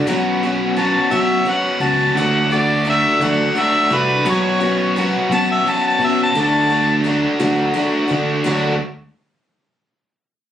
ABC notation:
X:1
M:6/8
L:1/16
Q:3/8=57
K:D
V:1 name="Harmonica"
z4 a2 e2 f2 a2 | f2 d2 e2 f2 e2 B2 | c4 z2 a e a a e a | a4 z8 |
z12 |]
V:2 name="Overdriven electric guitar"
[B,,F,B,CF]2 [B,CF]2 [F,B,CF]2 [B,CF]2 [F,B,CF]2 [B,CF]2 | [D,A,DF]2 [A,DF]2 [D,A,DF]2 [A,DF]2 [D,A,DF]2 [A,DF]2 | [B,,F,B,CF]2 [B,CF]2 [F,B,CF]2 [B,CF]2 [F,B,CF]2 [B,CF]2 | [D,A,DF]2 [A,DF]2 [D,A,DF]2 [A,DF]2 [D,A,DF]2 [A,DF]2 |
[D,F,A,DF]2 z8 z2 |]
V:3 name="Steel-string acoustic guitar"
[B,,F,B,CF]2 [B,CF]2 [F,B,CF]2 [B,,F,B,CF]2 [F,B,CF]2 [B,CF]2 | [D,F,A,DF]2 [A,DF]2 [F,A,DF]2 [D,F,A,DF]2 [F,A,DF]2 [A,DF]2 | [B,,F,B,CF]2 [B,CF]2 [F,B,CF]2 [B,,F,B,CF]2 [F,B,CF]2 [B,CF]2 | [D,F,A,DF]2 [A,DF]2 [F,A,DF]2 [D,F,A,DF]2 [F,A,DF]2 [A,DF]2 |
[D,F,A,DF]2 z8 z2 |]
V:4 name="Fingered electric bass" clef=bass
B,,,6 B,,,2 z2 C,,2 | D,,6 D,,2 z2 =C,,2 | B,,,6 B,,,2 z2 B,,2 | D,,6 D,,2 z2 D,2 |
D,,2 z8 z2 |]